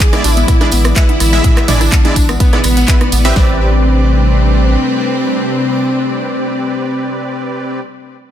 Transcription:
0.00 3.32 D3 medium
0.00 3.32 E3 medium
0.00 3.32 G#3 medium
0.00 3.32 B3 medium
0.00 0.10 B3 medium
0.00 3.32 E4 medium
0.00 0.24 G#4 loud
0.00 0.26 G#4 loud
0.00 3.37 D5 medium
0.00 3.37 D6 medium
0.00 kick loud
0.00 clap loud
0.00 closed hi-hat loud
0.00 tambourine soft
0.13 0.23 G#3 loud
0.13 0.22 B3 medium
0.13 0.23 E4 medium
0.13 0.23 D5 loud
0.13 cross-stick medium
0.13 closed hi-hat soft
0.13 high conga medium
0.24 0.44 A1 medium
0.24 0.34 D4 medium
0.24 0.87 E4 loud
0.24 open hi-hat loud
0.24 tambourine medium
0.37 0.46 B3 medium
0.37 closed hi-hat soft
0.37 tambourine soft
0.48 0.58 B3 medium
0.48 kick loud
0.48 cross-stick soft
0.48 closed hi-hat loud
0.48 mid tom medium
0.48 tambourine soft
0.61 0.67 G#3 medium
0.61 0.70 D4 loud
0.61 0.67 E4 medium
0.61 0.67 D5 medium
0.61 cross-stick medium
0.61 closed hi-hat soft
0.61 high conga medium
0.71 0.92 A1 loud
0.71 0.82 B3 medium
0.71 open hi-hat loud
0.71 tambourine medium
0.84 0.94 B3 medium
0.84 cross-stick medium
0.84 closed hi-hat soft
0.84 tambourine medium
0.96 1.03 G#3 medium
0.96 1.03 E4 medium
0.96 1.59 E4 loud
0.96 1.03 B4 loud
0.96 kick loud
0.96 clap loud
0.96 closed hi-hat medium
0.96 tambourine soft
1.09 1.18 B3 medium
1.09 closed hi-hat soft
1.09 high conga medium
1.20 1.40 A1 loud
1.20 1.30 B3 medium
1.20 cross-stick soft
1.20 open hi-hat loud
1.20 tambourine medium
1.33 1.66 G#3 loud
1.33 1.42 B3 medium
1.33 1.66 E4 medium
1.33 1.66 E5 loud
1.33 tambourine medium
1.44 1.54 G#4 loud
1.44 kick loud
1.44 closed hi-hat loud
1.44 mid tom medium
1.44 tambourine soft
1.57 1.66 B3 medium
1.57 cross-stick medium
1.57 clap soft
1.57 closed hi-hat soft
1.68 1.88 A1 medium
1.68 1.79 G#3 loud
1.68 1.78 B3 medium
1.68 2.31 D4 loud
1.68 1.79 E4 loud
1.68 1.79 D5 loud
1.68 mid tom medium
1.68 open hi-hat loud
1.68 tambourine loud
1.81 1.90 E4 medium
1.81 cross-stick medium
1.81 closed hi-hat soft
1.81 tambourine medium
1.92 2.02 B3 medium
1.92 kick loud
1.92 cross-stick soft
1.92 clap loud
1.92 closed hi-hat loud
2.05 2.15 G#3 loud
2.05 2.14 B3 medium
2.05 2.15 E4 medium
2.05 2.15 D5 loud
2.05 closed hi-hat soft
2.05 high conga medium
2.16 2.36 A1 medium
2.16 2.26 D4 medium
2.16 kick medium
2.16 open hi-hat loud
2.16 tambourine medium
2.29 2.38 B3 medium
2.29 cross-stick medium
2.29 closed hi-hat soft
2.29 tambourine soft
2.40 2.50 B3 medium
2.40 3.27 B3 loud
2.40 kick loud
2.40 closed hi-hat loud
2.40 tambourine soft
2.53 2.59 G#3 medium
2.53 2.62 B3 loud
2.53 2.59 E4 medium
2.53 2.59 D5 medium
2.53 cross-stick medium
2.53 closed hi-hat soft
2.53 high conga medium
2.64 2.84 A1 loud
2.64 2.74 B3 medium
2.64 cross-stick soft
2.64 open hi-hat loud
2.64 tambourine loud
2.77 2.86 B3 medium
2.77 closed hi-hat soft
2.77 tambourine medium
2.88 2.95 G#3 medium
2.88 2.95 E4 medium
2.88 2.95 B4 loud
2.88 kick loud
2.88 clap loud
2.88 closed hi-hat loud
2.88 tambourine soft
3.01 3.10 B3 medium
3.01 cross-stick medium
3.01 closed hi-hat soft
3.01 high conga medium
3.12 3.32 A1 loud
3.12 3.22 B3 medium
3.12 open hi-hat loud
3.12 tambourine loud
3.25 3.34 B3 medium
3.25 3.35 C4 loud
3.25 3.35 G4 medium
3.25 3.35 B4 medium
3.25 3.58 E5 loud
3.25 closed hi-hat soft
3.25 tambourine medium
3.36 4.76 A1 loud
3.36 7.80 C3 medium
3.36 7.80 G3 medium
3.36 7.80 A3 medium
3.36 7.79 C4 loud
3.36 7.79 C4 medium
3.36 7.79 C4 loud
3.36 7.79 C4 medium
3.36 7.80 D4 medium
3.36 7.79 G4 medium
3.36 7.79 B4 medium
3.36 7.80 B4 medium
3.36 7.79 D5 medium
3.36 kick loud
3.36 snare loud

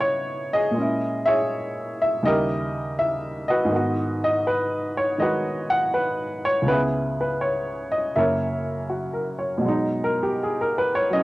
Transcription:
0.00 0.73 C#3 soft
0.00 0.79 E3 soft
0.00 0.75 B3 soft
0.00 0.76 C#4 soft
0.00 0.72 D#4 medium
0.00 0.72 E4 medium
0.00 0.55 G#4 medium
0.00 0.78 B4 medium
0.00 0.54 C#5 medium
0.00 0.53 D#5 medium
0.53 1.26 G#4 medium
0.53 1.29 D#5 medium
0.71 2.21 A#2 soft
0.71 2.23 G#3 soft
0.78 2.25 C#4 soft
0.78 2.22 E4 medium
1.26 2.20 G#4 medium
1.26 2.20 C#5 medium
1.26 1.96 E5 medium
2.02 2.07 E5 medium
2.23 3.71 D#2 soft
2.23 3.71 C#3 soft
2.23 3.71 G3 soft
2.23 3.72 E4 medium
2.23 3.69 G4 medium
2.23 2.95 D#5 medium
2.27 3.70 A#4 medium
2.99 3.46 E5 medium
3.48 3.74 F#4 medium
3.48 4.46 B4 medium
3.48 4.18 D#5 medium
3.65 6.64 G#2 medium
3.65 5.17 D#3 soft
3.72 6.68 B3 soft
3.72 5.21 F#4 medium
4.24 4.47 D#5 medium
4.47 4.99 B4 medium
4.97 5.21 C#5 medium
5.18 6.67 D#3 soft
5.18 6.68 G#3 soft
5.18 6.68 D#4 soft
5.18 5.72 D#5 medium
5.22 6.65 F#4 medium
5.22 5.93 B4 medium
5.70 5.94 F#5 medium
5.94 6.46 B4 medium
6.45 6.66 C#5 medium
6.62 8.13 C#2 soft
6.66 8.15 C#3 soft
6.66 8.17 B3 soft
6.66 6.72 E4 medium
6.66 8.13 G#4 medium
6.66 6.80 B4 medium
6.74 8.16 E4 medium
7.21 7.26 B4 medium
7.41 7.94 C#5 medium
7.91 8.16 D#5 medium
8.16 9.64 F#2 soft
8.16 9.64 C#3 soft
8.16 9.64 A#3 soft
8.16 9.65 E4 medium
8.16 9.12 A#4 soft
8.16 9.37 C#5 medium
8.16 8.86 E5 medium
8.89 9.37 F#4 soft
9.13 9.53 A#4 soft
9.39 9.78 C#5 soft
9.58 11.23 B2 medium
9.58 11.09 F#3 medium
9.65 11.23 G#3 medium
9.65 11.23 D#4 medium
10.04 10.20 A#4 medium
10.23 10.36 G4 medium
10.43 10.66 G#4 medium
10.61 10.87 A#4 medium
10.78 10.95 B4 medium
10.95 11.09 C#5 medium
11.10 11.23 F#3 soft
11.10 11.23 C#4 soft
11.10 11.23 D#5 medium

